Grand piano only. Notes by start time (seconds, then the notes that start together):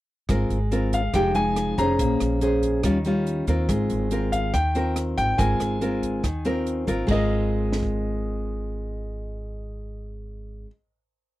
0.94 F5
1.15 G5
1.35 G#5
1.78 A#5
4.32 F5
4.54 G5
5.18 G5
5.38 G#5
7.11 D#5